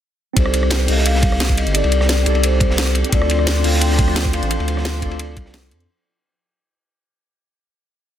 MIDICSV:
0, 0, Header, 1, 6, 480
1, 0, Start_track
1, 0, Tempo, 344828
1, 511, Time_signature, 4, 2, 24, 8
1, 11394, End_track
2, 0, Start_track
2, 0, Title_t, "Vibraphone"
2, 0, Program_c, 0, 11
2, 516, Note_on_c, 0, 72, 84
2, 1233, Note_on_c, 0, 75, 90
2, 1255, Note_off_c, 0, 72, 0
2, 1340, Note_off_c, 0, 75, 0
2, 1475, Note_on_c, 0, 77, 96
2, 2190, Note_on_c, 0, 75, 93
2, 2214, Note_off_c, 0, 77, 0
2, 2436, Note_on_c, 0, 74, 98
2, 2438, Note_off_c, 0, 75, 0
2, 3337, Note_off_c, 0, 74, 0
2, 3392, Note_on_c, 0, 72, 92
2, 4061, Note_off_c, 0, 72, 0
2, 4352, Note_on_c, 0, 74, 102
2, 5021, Note_off_c, 0, 74, 0
2, 5068, Note_on_c, 0, 77, 103
2, 5310, Note_on_c, 0, 79, 113
2, 5317, Note_off_c, 0, 77, 0
2, 5980, Note_off_c, 0, 79, 0
2, 6031, Note_on_c, 0, 77, 100
2, 7655, Note_off_c, 0, 77, 0
2, 11394, End_track
3, 0, Start_track
3, 0, Title_t, "Tine electric piano"
3, 0, Program_c, 1, 4
3, 465, Note_on_c, 1, 60, 97
3, 487, Note_on_c, 1, 63, 88
3, 512, Note_on_c, 1, 67, 86
3, 535, Note_on_c, 1, 69, 86
3, 559, Note_on_c, 1, 74, 107
3, 788, Control_c, 1, 64, 127
3, 1169, Note_off_c, 1, 60, 0
3, 1186, Note_on_c, 1, 60, 84
3, 1192, Note_off_c, 1, 63, 0
3, 1204, Note_off_c, 1, 67, 0
3, 1209, Note_on_c, 1, 63, 75
3, 1216, Note_off_c, 1, 69, 0
3, 1228, Note_off_c, 1, 74, 0
3, 1233, Note_on_c, 1, 67, 75
3, 1257, Note_on_c, 1, 69, 75
3, 1280, Note_on_c, 1, 77, 92
3, 2369, Note_off_c, 1, 60, 0
3, 2385, Note_on_c, 1, 60, 86
3, 2393, Note_off_c, 1, 63, 0
3, 2405, Note_off_c, 1, 67, 0
3, 2407, Note_on_c, 1, 63, 79
3, 2417, Note_off_c, 1, 69, 0
3, 2428, Note_off_c, 1, 77, 0
3, 2433, Note_on_c, 1, 67, 80
3, 2456, Note_on_c, 1, 69, 81
3, 2479, Note_on_c, 1, 74, 97
3, 3091, Note_off_c, 1, 60, 0
3, 3108, Note_on_c, 1, 60, 99
3, 3112, Note_off_c, 1, 63, 0
3, 3125, Note_off_c, 1, 67, 0
3, 3132, Note_on_c, 1, 63, 88
3, 3136, Note_off_c, 1, 69, 0
3, 3148, Note_off_c, 1, 74, 0
3, 3155, Note_on_c, 1, 67, 92
3, 3179, Note_on_c, 1, 69, 90
3, 3203, Note_on_c, 1, 74, 110
3, 4292, Note_off_c, 1, 60, 0
3, 4308, Note_on_c, 1, 60, 99
3, 4314, Note_off_c, 1, 63, 0
3, 4326, Note_off_c, 1, 67, 0
3, 4331, Note_on_c, 1, 62, 90
3, 4338, Note_off_c, 1, 69, 0
3, 4350, Note_off_c, 1, 74, 0
3, 4355, Note_on_c, 1, 65, 90
3, 4368, Control_c, 1, 64, 0
3, 4379, Note_on_c, 1, 69, 92
3, 4402, Note_on_c, 1, 74, 109
3, 4608, Control_c, 1, 64, 127
3, 5009, Note_off_c, 1, 60, 0
3, 5025, Note_on_c, 1, 60, 84
3, 5034, Note_off_c, 1, 62, 0
3, 5046, Note_off_c, 1, 65, 0
3, 5048, Note_on_c, 1, 62, 77
3, 5058, Note_off_c, 1, 69, 0
3, 5069, Note_off_c, 1, 74, 0
3, 5073, Note_on_c, 1, 65, 78
3, 5097, Note_on_c, 1, 69, 76
3, 5121, Note_on_c, 1, 79, 96
3, 6208, Note_off_c, 1, 60, 0
3, 6224, Note_on_c, 1, 60, 85
3, 6232, Note_off_c, 1, 62, 0
3, 6245, Note_off_c, 1, 65, 0
3, 6250, Note_on_c, 1, 62, 82
3, 6257, Note_off_c, 1, 69, 0
3, 6269, Note_off_c, 1, 79, 0
3, 6272, Note_on_c, 1, 65, 79
3, 6295, Note_on_c, 1, 69, 77
3, 6320, Note_on_c, 1, 74, 96
3, 6926, Note_off_c, 1, 60, 0
3, 6943, Note_on_c, 1, 60, 98
3, 6950, Note_off_c, 1, 62, 0
3, 6964, Note_off_c, 1, 65, 0
3, 6967, Note_on_c, 1, 62, 90
3, 6976, Note_off_c, 1, 69, 0
3, 6988, Note_off_c, 1, 74, 0
3, 6991, Note_on_c, 1, 65, 88
3, 7015, Note_on_c, 1, 69, 92
3, 7038, Note_on_c, 1, 74, 107
3, 8140, Note_off_c, 1, 60, 0
3, 8152, Note_off_c, 1, 62, 0
3, 8164, Note_off_c, 1, 65, 0
3, 8176, Note_off_c, 1, 69, 0
3, 8187, Note_off_c, 1, 74, 0
3, 8206, Control_c, 1, 64, 0
3, 11394, End_track
4, 0, Start_track
4, 0, Title_t, "Analog synth pad"
4, 0, Program_c, 2, 89
4, 4351, Note_on_c, 2, 62, 78
4, 4351, Note_on_c, 2, 72, 94
4, 4353, Note_on_c, 2, 53, 81
4, 8152, Note_off_c, 2, 62, 0
4, 8153, Note_off_c, 2, 53, 0
4, 8153, Note_off_c, 2, 72, 0
4, 11394, End_track
5, 0, Start_track
5, 0, Title_t, "Sub bass"
5, 0, Program_c, 3, 38
5, 509, Note_on_c, 3, 36, 98
5, 1212, Note_off_c, 3, 36, 0
5, 1232, Note_on_c, 3, 36, 86
5, 2298, Note_off_c, 3, 36, 0
5, 2319, Note_on_c, 3, 31, 98
5, 2533, Note_off_c, 3, 31, 0
5, 2559, Note_on_c, 3, 36, 102
5, 3133, Note_off_c, 3, 36, 0
5, 3153, Note_on_c, 3, 36, 85
5, 4219, Note_off_c, 3, 36, 0
5, 4350, Note_on_c, 3, 38, 99
5, 5052, Note_off_c, 3, 38, 0
5, 5072, Note_on_c, 3, 38, 85
5, 6139, Note_off_c, 3, 38, 0
5, 6159, Note_on_c, 3, 33, 100
5, 6373, Note_off_c, 3, 33, 0
5, 6399, Note_on_c, 3, 38, 103
5, 6973, Note_off_c, 3, 38, 0
5, 6990, Note_on_c, 3, 38, 88
5, 7463, Note_off_c, 3, 38, 0
5, 7471, Note_on_c, 3, 36, 102
5, 7952, Note_on_c, 3, 41, 100
5, 7973, Note_off_c, 3, 36, 0
5, 8169, Note_off_c, 3, 41, 0
5, 11394, End_track
6, 0, Start_track
6, 0, Title_t, "Drums"
6, 508, Note_on_c, 9, 36, 123
6, 509, Note_on_c, 9, 42, 95
6, 513, Note_on_c, 9, 51, 78
6, 634, Note_on_c, 9, 37, 60
6, 648, Note_off_c, 9, 36, 0
6, 648, Note_off_c, 9, 42, 0
6, 653, Note_off_c, 9, 51, 0
6, 745, Note_on_c, 9, 51, 65
6, 747, Note_on_c, 9, 42, 68
6, 773, Note_off_c, 9, 37, 0
6, 876, Note_on_c, 9, 37, 36
6, 884, Note_off_c, 9, 51, 0
6, 887, Note_off_c, 9, 42, 0
6, 980, Note_on_c, 9, 51, 85
6, 987, Note_on_c, 9, 38, 118
6, 987, Note_on_c, 9, 42, 100
6, 994, Note_off_c, 9, 38, 0
6, 994, Note_on_c, 9, 38, 115
6, 1015, Note_off_c, 9, 37, 0
6, 1119, Note_off_c, 9, 51, 0
6, 1126, Note_off_c, 9, 42, 0
6, 1133, Note_off_c, 9, 38, 0
6, 1228, Note_on_c, 9, 42, 68
6, 1235, Note_on_c, 9, 46, 86
6, 1365, Note_on_c, 9, 38, 38
6, 1367, Note_off_c, 9, 42, 0
6, 1374, Note_off_c, 9, 46, 0
6, 1471, Note_on_c, 9, 42, 94
6, 1479, Note_on_c, 9, 51, 81
6, 1504, Note_off_c, 9, 38, 0
6, 1600, Note_on_c, 9, 38, 45
6, 1610, Note_off_c, 9, 42, 0
6, 1618, Note_off_c, 9, 51, 0
6, 1706, Note_on_c, 9, 51, 67
6, 1709, Note_on_c, 9, 36, 108
6, 1711, Note_on_c, 9, 42, 69
6, 1739, Note_off_c, 9, 38, 0
6, 1841, Note_on_c, 9, 37, 38
6, 1845, Note_off_c, 9, 51, 0
6, 1848, Note_off_c, 9, 36, 0
6, 1850, Note_off_c, 9, 42, 0
6, 1951, Note_on_c, 9, 51, 95
6, 1952, Note_on_c, 9, 38, 116
6, 1952, Note_on_c, 9, 42, 98
6, 1955, Note_off_c, 9, 38, 0
6, 1955, Note_on_c, 9, 38, 116
6, 1980, Note_off_c, 9, 37, 0
6, 2076, Note_on_c, 9, 36, 61
6, 2080, Note_off_c, 9, 42, 0
6, 2080, Note_on_c, 9, 42, 38
6, 2091, Note_off_c, 9, 51, 0
6, 2094, Note_off_c, 9, 38, 0
6, 2193, Note_off_c, 9, 42, 0
6, 2193, Note_on_c, 9, 42, 66
6, 2195, Note_on_c, 9, 51, 75
6, 2216, Note_off_c, 9, 36, 0
6, 2321, Note_off_c, 9, 42, 0
6, 2321, Note_on_c, 9, 42, 38
6, 2335, Note_off_c, 9, 51, 0
6, 2428, Note_on_c, 9, 51, 87
6, 2432, Note_off_c, 9, 42, 0
6, 2432, Note_on_c, 9, 42, 94
6, 2559, Note_off_c, 9, 51, 0
6, 2559, Note_on_c, 9, 51, 45
6, 2571, Note_off_c, 9, 42, 0
6, 2670, Note_off_c, 9, 51, 0
6, 2670, Note_on_c, 9, 51, 64
6, 2671, Note_on_c, 9, 42, 65
6, 2792, Note_on_c, 9, 38, 51
6, 2798, Note_on_c, 9, 37, 37
6, 2810, Note_off_c, 9, 51, 0
6, 2811, Note_off_c, 9, 42, 0
6, 2908, Note_on_c, 9, 51, 93
6, 2911, Note_off_c, 9, 38, 0
6, 2911, Note_on_c, 9, 38, 123
6, 2911, Note_on_c, 9, 42, 94
6, 2913, Note_off_c, 9, 38, 0
6, 2913, Note_on_c, 9, 38, 108
6, 2937, Note_off_c, 9, 37, 0
6, 3047, Note_off_c, 9, 51, 0
6, 3050, Note_off_c, 9, 42, 0
6, 3053, Note_off_c, 9, 38, 0
6, 3145, Note_on_c, 9, 51, 71
6, 3150, Note_on_c, 9, 42, 70
6, 3269, Note_off_c, 9, 51, 0
6, 3269, Note_on_c, 9, 51, 46
6, 3289, Note_off_c, 9, 42, 0
6, 3390, Note_on_c, 9, 42, 93
6, 3395, Note_off_c, 9, 51, 0
6, 3395, Note_on_c, 9, 51, 85
6, 3529, Note_off_c, 9, 42, 0
6, 3534, Note_off_c, 9, 51, 0
6, 3622, Note_on_c, 9, 51, 66
6, 3630, Note_on_c, 9, 36, 116
6, 3632, Note_on_c, 9, 42, 67
6, 3761, Note_off_c, 9, 51, 0
6, 3764, Note_on_c, 9, 38, 56
6, 3769, Note_off_c, 9, 36, 0
6, 3771, Note_off_c, 9, 42, 0
6, 3870, Note_on_c, 9, 51, 89
6, 3871, Note_off_c, 9, 38, 0
6, 3871, Note_on_c, 9, 38, 122
6, 3871, Note_on_c, 9, 42, 96
6, 3877, Note_off_c, 9, 38, 0
6, 3877, Note_on_c, 9, 38, 113
6, 4000, Note_off_c, 9, 42, 0
6, 4000, Note_on_c, 9, 42, 38
6, 4009, Note_off_c, 9, 51, 0
6, 4016, Note_off_c, 9, 38, 0
6, 4103, Note_on_c, 9, 51, 69
6, 4112, Note_off_c, 9, 42, 0
6, 4112, Note_on_c, 9, 42, 65
6, 4238, Note_off_c, 9, 42, 0
6, 4238, Note_on_c, 9, 42, 36
6, 4242, Note_off_c, 9, 51, 0
6, 4350, Note_off_c, 9, 42, 0
6, 4350, Note_on_c, 9, 36, 127
6, 4350, Note_on_c, 9, 42, 94
6, 4355, Note_on_c, 9, 51, 82
6, 4477, Note_on_c, 9, 37, 59
6, 4489, Note_off_c, 9, 36, 0
6, 4489, Note_off_c, 9, 42, 0
6, 4494, Note_off_c, 9, 51, 0
6, 4590, Note_on_c, 9, 42, 65
6, 4604, Note_on_c, 9, 51, 72
6, 4616, Note_off_c, 9, 37, 0
6, 4718, Note_on_c, 9, 37, 38
6, 4729, Note_off_c, 9, 42, 0
6, 4744, Note_off_c, 9, 51, 0
6, 4827, Note_on_c, 9, 51, 93
6, 4830, Note_on_c, 9, 38, 121
6, 4830, Note_on_c, 9, 42, 92
6, 4857, Note_off_c, 9, 37, 0
6, 4966, Note_off_c, 9, 51, 0
6, 4969, Note_off_c, 9, 38, 0
6, 4969, Note_off_c, 9, 42, 0
6, 5071, Note_on_c, 9, 42, 63
6, 5075, Note_on_c, 9, 46, 79
6, 5206, Note_on_c, 9, 38, 42
6, 5210, Note_off_c, 9, 42, 0
6, 5214, Note_off_c, 9, 46, 0
6, 5307, Note_on_c, 9, 51, 92
6, 5312, Note_on_c, 9, 42, 90
6, 5345, Note_off_c, 9, 38, 0
6, 5435, Note_on_c, 9, 38, 41
6, 5446, Note_off_c, 9, 51, 0
6, 5451, Note_off_c, 9, 42, 0
6, 5550, Note_on_c, 9, 36, 117
6, 5550, Note_on_c, 9, 42, 65
6, 5553, Note_on_c, 9, 51, 65
6, 5574, Note_off_c, 9, 38, 0
6, 5678, Note_on_c, 9, 37, 37
6, 5689, Note_off_c, 9, 36, 0
6, 5690, Note_off_c, 9, 42, 0
6, 5692, Note_off_c, 9, 51, 0
6, 5790, Note_on_c, 9, 38, 127
6, 5792, Note_off_c, 9, 38, 0
6, 5792, Note_on_c, 9, 38, 127
6, 5792, Note_on_c, 9, 42, 92
6, 5803, Note_on_c, 9, 51, 89
6, 5817, Note_off_c, 9, 37, 0
6, 5917, Note_on_c, 9, 36, 67
6, 5920, Note_off_c, 9, 42, 0
6, 5920, Note_on_c, 9, 42, 35
6, 5931, Note_off_c, 9, 38, 0
6, 5942, Note_off_c, 9, 51, 0
6, 6033, Note_off_c, 9, 42, 0
6, 6033, Note_on_c, 9, 42, 65
6, 6035, Note_on_c, 9, 51, 69
6, 6057, Note_off_c, 9, 36, 0
6, 6163, Note_off_c, 9, 42, 0
6, 6163, Note_on_c, 9, 42, 36
6, 6175, Note_off_c, 9, 51, 0
6, 6273, Note_on_c, 9, 51, 81
6, 6274, Note_off_c, 9, 42, 0
6, 6274, Note_on_c, 9, 42, 88
6, 6403, Note_off_c, 9, 51, 0
6, 6403, Note_on_c, 9, 51, 46
6, 6413, Note_off_c, 9, 42, 0
6, 6512, Note_off_c, 9, 51, 0
6, 6512, Note_on_c, 9, 51, 66
6, 6514, Note_on_c, 9, 42, 64
6, 6642, Note_on_c, 9, 37, 37
6, 6643, Note_on_c, 9, 38, 50
6, 6652, Note_off_c, 9, 51, 0
6, 6653, Note_off_c, 9, 42, 0
6, 6750, Note_off_c, 9, 38, 0
6, 6750, Note_on_c, 9, 38, 124
6, 6753, Note_off_c, 9, 38, 0
6, 6753, Note_on_c, 9, 38, 121
6, 6753, Note_on_c, 9, 42, 88
6, 6755, Note_on_c, 9, 51, 85
6, 6781, Note_off_c, 9, 37, 0
6, 6892, Note_off_c, 9, 38, 0
6, 6892, Note_off_c, 9, 42, 0
6, 6894, Note_off_c, 9, 51, 0
6, 6990, Note_on_c, 9, 36, 59
6, 6992, Note_on_c, 9, 42, 63
6, 6996, Note_on_c, 9, 51, 73
6, 7118, Note_off_c, 9, 51, 0
6, 7118, Note_on_c, 9, 51, 43
6, 7129, Note_off_c, 9, 36, 0
6, 7131, Note_off_c, 9, 42, 0
6, 7231, Note_on_c, 9, 42, 89
6, 7232, Note_off_c, 9, 51, 0
6, 7232, Note_on_c, 9, 51, 88
6, 7370, Note_off_c, 9, 42, 0
6, 7371, Note_off_c, 9, 51, 0
6, 7470, Note_on_c, 9, 36, 115
6, 7470, Note_on_c, 9, 42, 64
6, 7475, Note_on_c, 9, 51, 67
6, 7598, Note_on_c, 9, 38, 59
6, 7609, Note_off_c, 9, 36, 0
6, 7610, Note_off_c, 9, 42, 0
6, 7614, Note_off_c, 9, 51, 0
6, 7707, Note_on_c, 9, 51, 99
6, 7710, Note_off_c, 9, 38, 0
6, 7710, Note_on_c, 9, 38, 126
6, 7710, Note_on_c, 9, 42, 87
6, 7718, Note_off_c, 9, 38, 0
6, 7718, Note_on_c, 9, 38, 124
6, 7840, Note_off_c, 9, 42, 0
6, 7840, Note_on_c, 9, 42, 35
6, 7846, Note_off_c, 9, 51, 0
6, 7857, Note_off_c, 9, 38, 0
6, 7954, Note_off_c, 9, 42, 0
6, 7954, Note_on_c, 9, 42, 63
6, 7959, Note_on_c, 9, 51, 66
6, 8080, Note_off_c, 9, 42, 0
6, 8080, Note_on_c, 9, 42, 35
6, 8098, Note_off_c, 9, 51, 0
6, 8219, Note_off_c, 9, 42, 0
6, 11394, End_track
0, 0, End_of_file